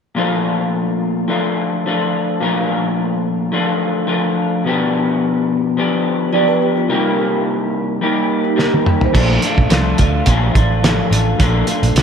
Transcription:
0.15 1.28 A#2 medium
0.15 1.27 F3 medium
0.15 1.27 A3 medium
0.15 1.29 D4 medium
0.15 1.30 F4 medium
1.28 1.86 F3 medium
1.28 1.84 A3 medium
1.28 1.87 D4 medium
1.28 1.87 F4 medium
1.86 2.41 F3 medium
1.86 2.41 A3 medium
1.86 2.42 D4 medium
1.86 2.43 F4 medium
2.41 3.53 A#2 medium
2.41 3.51 F3 medium
2.41 3.52 A3 medium
2.41 3.53 D4 medium
2.41 3.54 F4 medium
3.52 4.07 F3 medium
3.52 4.06 A3 medium
3.52 4.08 D4 medium
3.52 4.09 F4 medium
4.07 4.66 F3 medium
4.07 4.64 A3 medium
4.07 4.67 D4 medium
4.07 4.67 F4 medium
4.64 5.77 B2 medium
4.64 5.76 F3 medium
4.64 5.77 B3 medium
4.64 5.77 D4 medium
4.64 5.79 G4 medium
5.77 6.31 F3 medium
5.77 6.32 B3 medium
5.77 6.33 D4 medium
5.77 6.34 G4 medium
6.33 6.89 F3 medium
6.33 6.89 B3 medium
6.33 6.90 D4 medium
6.33 6.91 G4 medium
6.33 6.48 D5 medium
6.48 6.60 B4 medium
6.62 6.77 G4 medium
6.77 7.04 F4 medium
6.88 8.01 C3 medium
6.88 8.00 G3 medium
6.88 8.02 A#3 medium
6.88 8.02 D#4 medium
6.88 8.02 G4 medium
8.01 8.55 G3 medium
8.01 8.57 A#3 medium
8.01 8.57 D#4 medium
8.01 8.57 G4 medium
8.44 8.57 D#4 medium
8.56 9.13 G3 medium
8.56 9.13 A#3 medium
8.56 9.14 D#4 medium
8.56 8.73 G4 medium
8.56 9.14 G4 medium
8.56 snare medium
8.74 9.01 A#4 medium
8.74 high tom medium
8.86 mid tom medium
9.01 9.29 C5 medium
9.01 floor tom medium
9.13 9.37 A#1 medium
9.13 9.42 A#2 medium
9.13 9.42 F3 medium
9.13 9.42 A3 medium
9.13 9.42 D4 medium
9.13 9.41 F4 medium
9.13 kick loud
9.13 crash medium
9.42 9.69 A3 soft
9.42 9.70 D4 medium
9.42 9.70 F4 medium
9.42 closed hi-hat medium
9.57 9.68 A#1 medium
9.57 kick medium
9.69 9.93 C2 medium
9.69 9.98 F3 medium
9.69 9.99 A3 medium
9.69 9.98 D4 medium
9.69 9.97 F4 medium
9.69 snare loud
9.69 closed hi-hat medium
9.98 10.21 D2 medium
9.98 10.26 A3 soft
9.98 10.27 D4 soft
9.98 10.26 F4 medium
9.98 kick medium
9.98 closed hi-hat medium
10.26 10.49 A#1 medium
10.26 10.55 A#2 medium
10.26 10.55 F3 medium
10.26 10.55 A3 medium
10.26 10.54 D4 medium
10.26 10.52 F4 medium
10.26 kick medium
10.26 closed hi-hat medium
10.54 11.00 A1 medium
10.54 10.83 A3 soft
10.54 10.83 D4 medium
10.54 10.82 F4 soft
10.54 kick medium
10.54 closed hi-hat medium
10.83 11.11 F3 medium
10.83 11.12 A3 medium
10.83 11.11 D4 medium
10.83 11.10 F4 medium
10.83 snare loud
10.83 closed hi-hat medium
11.11 11.33 A1 medium
11.11 11.39 A3 soft
11.11 11.40 D4 soft
11.11 11.39 F4 medium
11.11 closed hi-hat medium
11.39 11.62 A#1 medium
11.39 11.67 A#2 medium
11.39 11.67 F3 medium
11.39 11.68 A3 medium
11.39 11.67 D4 medium
11.39 11.67 F4 medium
11.39 kick loud
11.39 closed hi-hat medium
11.67 11.95 A3 soft
11.67 11.96 D4 soft
11.67 11.96 F4 soft
11.67 closed hi-hat medium
11.83 11.93 A#1 loud
11.83 closed hi-hat soft
11.95 12.03 C2 medium
11.95 12.03 F3 medium
11.95 12.03 A3 medium
11.95 12.03 D4 medium
11.95 12.03 F4 medium
11.95 snare loud
11.95 closed hi-hat medium

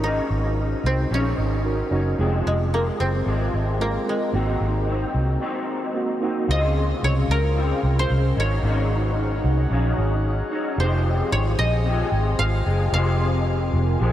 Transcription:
0.00 0.19 G#1 medium
0.00 1.09 G#2 medium
0.00 1.10 C#3 medium
0.00 0.68 A#3 medium
0.00 0.62 C#4 medium
0.00 0.92 C#4 medium
0.00 0.62 D#4 medium
0.00 2.38 D#4 medium
0.00 0.63 F#4 medium
0.00 0.63 A#4 medium
0.05 1.10 F#3 medium
0.05 1.11 C#4 medium
0.05 1.12 D#4 medium
0.30 0.73 G#1 medium
0.84 1.05 C2 medium
0.84 1.20 C4 medium
1.11 1.32 A#1 medium
1.11 1.92 G#2 medium
1.11 1.92 C#3 medium
1.11 1.92 F#3 medium
1.11 1.92 C#4 medium
1.11 3.06 C#4 loud
1.11 1.90 D#4 medium
1.38 1.81 G#1 medium
1.64 1.84 C#4 medium
1.64 1.84 D#4 medium
1.64 1.85 F#4 medium
1.64 1.85 A#4 medium
1.91 2.13 F#1 medium
1.91 2.19 F#3 soft
1.91 2.11 C#4 medium
1.91 2.19 C#4 soft
1.91 2.18 D#4 medium
1.91 2.11 D#4 medium
1.91 2.12 F#4 medium
1.91 2.12 C#5 medium
2.18 2.40 F1 loud
2.18 2.72 F2 medium
2.18 2.70 C3 medium
2.18 2.71 F3 medium
2.18 2.97 G#3 medium
2.18 2.73 G#3 loud
2.18 2.97 C4 medium
2.18 2.74 C4 medium
2.18 2.97 F4 medium
2.18 2.98 G#4 medium
2.46 2.89 F1 medium
2.46 2.54 G#3 medium
2.71 3.25 C3 soft
2.71 3.26 F3 medium
2.71 3.28 G#3 medium
2.71 2.81 A#3 medium
2.71 3.29 C4 medium
3.00 3.21 F#1 medium
3.00 5.60 C4 loud
3.25 3.48 G#1 medium
3.25 4.33 F2 medium
3.25 4.34 C3 medium
3.25 4.34 F3 medium
3.25 4.35 G#3 medium
3.30 4.35 C4 medium
3.54 3.96 G#1 medium
3.79 3.99 G#3 medium
3.79 6.60 A#3 medium
3.79 4.00 C4 medium
3.79 4.00 F4 medium
3.79 4.00 A#4 medium
4.06 4.26 G#3 medium
4.06 4.39 G#3 medium
4.06 4.27 C4 medium
4.06 4.27 F4 medium
4.06 4.27 G#4 medium
4.32 4.55 G#1 medium
4.32 4.87 G#2 medium
4.32 4.85 D#3 medium
4.32 4.87 F#3 medium
4.32 5.11 A#3 medium
4.32 5.12 C4 medium
4.32 4.89 C4 medium
4.32 5.12 D#4 medium
4.32 5.12 F#4 medium
4.36 4.89 D#4 medium
4.60 5.04 G#1 medium
4.87 5.40 D#3 medium
4.87 5.40 F#3 medium
4.87 5.42 C4 medium
4.87 5.41 D#4 medium
5.14 5.36 C2 medium
5.40 6.22 G#2 medium
5.40 6.22 D#3 medium
5.40 6.22 F#3 medium
5.40 6.23 C4 medium
5.40 6.20 D#4 medium
5.94 6.14 A#3 medium
5.94 6.15 C4 medium
5.94 6.15 D#4 medium
5.94 6.15 F#4 medium
6.21 6.49 F#3 soft
6.21 6.41 A#3 medium
6.21 6.41 C4 medium
6.21 6.49 C4 soft
6.21 6.49 D#4 soft
6.21 6.42 D#4 medium
6.21 6.42 F#4 medium
6.48 6.92 C#2 loud
6.48 7.54 C#3 medium
6.48 8.35 C#3 medium
6.48 7.56 G#3 medium
6.48 7.56 C4 medium
6.48 14.12 G#4 medium
6.48 8.35 C5 medium
6.48 8.05 D#5 loud
6.48 8.35 F5 medium
6.52 7.57 F4 medium
7.03 7.24 C2 medium
7.03 7.11 C#5 medium
7.28 7.72 C#2 loud
7.28 9.15 A#4 medium
7.55 8.36 C#3 medium
7.55 8.39 G#3 medium
7.55 8.37 C4 medium
7.55 8.36 F4 medium
7.83 8.05 C2 medium
7.99 8.46 C5 medium
8.10 8.32 C2 loud
8.36 8.58 G#1 loud
8.36 8.64 F#3 soft
8.36 8.64 C#4 medium
8.36 8.63 D#4 medium
8.36 10.76 D#4 medium
8.36 10.76 C#5 medium
8.36 10.05 C#5 medium
8.36 10.76 F#5 medium
8.62 9.40 G#1 loud
8.62 9.70 G#2 medium
8.62 9.68 C#3 medium
8.62 9.70 F#3 medium
8.62 9.71 C#4 medium
8.67 9.72 D#4 medium
9.44 9.66 C2 medium
9.70 9.92 A#1 loud
9.70 10.51 C#3 medium
9.70 10.51 F#3 medium
9.70 10.51 C#4 medium
9.70 10.50 D#4 medium
9.98 10.41 G#1 medium
10.51 10.80 F#3 medium
10.51 10.79 C#4 medium
10.51 10.78 D#4 medium
10.78 11.21 F1 loud
10.78 11.86 F2 medium
10.78 11.84 C3 medium
10.78 11.86 F3 medium
10.78 11.87 G#3 medium
10.78 14.12 F4 medium
10.78 12.91 C5 medium
10.78 11.38 C5 medium
10.78 14.12 G#5 medium
10.82 11.88 C4 medium
11.32 11.54 G#1 loud
11.32 11.40 C#5 medium
11.59 12.02 A#1 loud
11.59 13.13 D#5 loud
11.85 12.66 C3 medium
11.85 12.68 F3 medium
11.85 12.67 G#3 medium
11.85 12.65 C4 medium
12.12 12.34 G#1 medium
12.39 12.61 G#1 loud
12.39 12.93 F5 loud
12.65 12.88 F#1 medium
12.65 12.93 F3 soft
12.65 12.94 G#3 medium
12.65 12.93 C4 medium
12.91 13.69 F1 loud
12.91 14.00 F2 medium
12.91 13.98 C3 medium
12.91 14.00 F3 medium
12.91 14.12 A#4 medium
12.91 14.12 F5 medium
12.95 14.01 G#3 medium
12.95 14.02 C4 medium
13.73 13.95 F1 medium
13.99 14.12 A#1 loud
13.99 14.12 C3 medium
13.99 14.12 F3 medium
13.99 14.12 G#3 medium
13.99 14.12 C4 medium

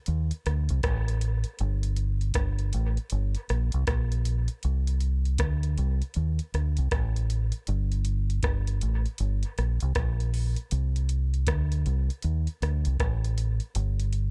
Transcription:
0.06 0.31 D#2 loud
0.06 closed hi-hat medium
0.31 closed hi-hat medium
0.46 0.69 D2 medium
0.46 cross-stick medium
0.46 closed hi-hat medium
0.69 0.83 C2 medium
0.69 closed hi-hat medium
0.83 1.43 A1 medium
0.83 kick loud
0.83 cross-stick loud
0.83 closed hi-hat medium
1.08 closed hi-hat medium
1.21 closed hi-hat loud
1.44 closed hi-hat medium
1.59 2.33 G1 loud
1.59 closed hi-hat medium
1.83 closed hi-hat medium
1.97 closed hi-hat medium
2.21 closed hi-hat soft
2.34 2.71 G1 medium
2.34 kick loud
2.34 cross-stick loud
2.34 closed hi-hat loud
2.59 closed hi-hat medium
2.73 2.97 A1 loud
2.73 closed hi-hat medium
2.97 closed hi-hat soft
3.10 3.35 G1 medium
3.10 closed hi-hat medium
3.35 closed hi-hat medium
3.49 3.72 A#1 medium
3.49 cross-stick medium
3.49 closed hi-hat medium
3.72 3.87 C2 medium
3.72 closed hi-hat medium
3.87 4.47 A#1 medium
3.87 kick medium
3.87 cross-stick loud
3.87 closed hi-hat medium
4.12 closed hi-hat medium
4.25 closed hi-hat loud
4.48 closed hi-hat medium
4.63 5.37 C2 loud
4.63 closed hi-hat medium
4.87 closed hi-hat medium
5.01 closed hi-hat medium
5.25 closed hi-hat soft
5.38 5.76 D2 loud
5.38 kick loud
5.38 cross-stick loud
5.38 closed hi-hat loud
5.63 closed hi-hat medium
5.78 6.01 C2 loud
5.78 closed hi-hat medium
6.02 closed hi-hat soft
6.14 6.39 D#2 loud
6.14 closed hi-hat medium
6.39 closed hi-hat medium
6.54 6.77 D2 loud
6.54 cross-stick medium
6.54 closed hi-hat medium
6.77 6.91 C2 loud
6.77 closed hi-hat medium
6.91 7.51 A1 medium
6.91 kick loud
6.91 cross-stick loud
6.91 closed hi-hat medium
7.16 closed hi-hat medium
7.30 closed hi-hat medium
7.52 closed hi-hat medium
7.67 8.41 G1 loud
7.67 closed hi-hat medium
7.92 closed hi-hat medium
8.05 closed hi-hat medium
8.30 closed hi-hat soft
8.43 8.80 G1 medium
8.43 kick loud
8.43 cross-stick loud
8.43 closed hi-hat medium
8.67 closed hi-hat medium
8.81 9.05 A1 loud
8.81 closed hi-hat medium
9.06 closed hi-hat soft
9.18 9.43 G1 medium
9.18 closed hi-hat medium
9.43 closed hi-hat medium
9.58 9.81 A#1 medium
9.58 cross-stick medium
9.58 closed hi-hat medium
9.80 9.95 C2 medium
9.80 closed hi-hat medium
9.95 10.55 A#1 medium
9.95 kick medium
9.95 cross-stick loud
9.95 closed hi-hat medium
10.20 closed hi-hat medium
10.34 open hi-hat medium
10.56 closed hi-hat medium
10.71 11.44 C2 loud
10.71 closed hi-hat medium
10.96 closed hi-hat medium
11.09 closed hi-hat medium
11.34 closed hi-hat soft
11.47 11.84 D2 loud
11.47 kick loud
11.47 cross-stick loud
11.47 closed hi-hat loud
11.72 closed hi-hat medium
11.86 12.09 C2 loud
11.86 closed hi-hat medium
12.10 closed hi-hat soft
12.22 12.47 D#2 medium
12.22 closed hi-hat medium
12.47 closed hi-hat medium
12.62 12.85 D2 medium
12.62 cross-stick medium
12.62 closed hi-hat medium
12.85 12.99 C2 medium
12.85 closed hi-hat medium
13.00 13.59 A1 loud
13.00 kick medium
13.00 cross-stick loud
13.00 closed hi-hat medium
13.24 closed hi-hat medium
13.38 closed hi-hat loud
13.60 closed hi-hat medium
13.75 14.31 G1 loud
13.75 closed hi-hat medium
14.00 closed hi-hat medium
14.13 closed hi-hat medium

